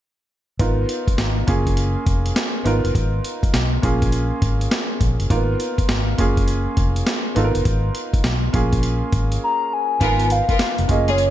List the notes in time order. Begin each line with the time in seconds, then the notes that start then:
0.59 G#1 B3 D#4 F4 A#4, kick, closed hi-hat
0.89 closed hi-hat
1.07 muted fingered electric bass stroke, kick, closed hi-hat
1.18 G#1, snare, closed hi-hat
1.47 F#1 A#3 C#4 F4 G#4, kick, closed hi-hat
1.67 kick, closed hi-hat
1.77 closed hi-hat
2.06 F1, kick, closed hi-hat
2.26 closed hi-hat
2.36 snare, closed hi-hat
2.64 G#1 B3 D#4 F4 A#4, closed hi-hat
2.84 F#1, closed hi-hat
2.95 G#1, kick, closed hi-hat
3.25 closed hi-hat
3.43 muted fingered electric bass stroke, kick, closed hi-hat
3.54 B1, snare, closed hi-hat
3.82 A#1 A#3 C#4 F4 G#4, kick, closed hi-hat
4.02 kick, closed hi-hat
4.12 closed hi-hat
4.42 G#1, kick, closed hi-hat
4.61 closed hi-hat
4.71 snare, closed hi-hat
5.01 A#1, kick, closed hi-hat
5.20 F#1, closed hi-hat
5.30 G#1 A#3 D#4 F4 A#4, kick, closed hi-hat
5.36 B3
5.60 closed hi-hat
5.78 muted fingered electric bass stroke, kick, closed hi-hat
5.89 G#1, snare, closed hi-hat
6.18 F#1 A#3 C#4 F4 G#4, kick, closed hi-hat
6.37 kick, closed hi-hat
6.48 closed hi-hat
6.77 F1, kick, closed hi-hat
6.96 closed hi-hat
7.07 snare, closed hi-hat
7.35 G#1 B3 D#4 F4 A4, closed hi-hat
7.44 A#4
7.55 F#1, closed hi-hat
7.65 G#1, kick, closed hi-hat
7.95 closed hi-hat
8.14 muted fingered electric bass stroke, kick, closed hi-hat
8.24 B1, snare, closed hi-hat
8.53 A#1 A#3 C#4 F4 G#4, kick, closed hi-hat
8.73 kick, closed hi-hat
8.83 closed hi-hat
9.12 G#1, kick, closed hi-hat
9.32 closed hi-hat
9.44 A#5
9.73 G#5
10.01 G#1 B3 D#4 F4 A#4, kick, closed hi-hat
10.19 closed hi-hat
10.30 F5, closed hi-hat
10.49 B3 F4 A#4, kick, closed hi-hat
10.59 muted fingered electric bass stroke, snare, closed hi-hat
10.78 F1, closed hi-hat
10.88 F#1 A#3 C#4 F4 G#4 D#5, kick, closed hi-hat
11.08 A#3 F4 G#4 C#5, closed hi-hat
11.18 closed hi-hat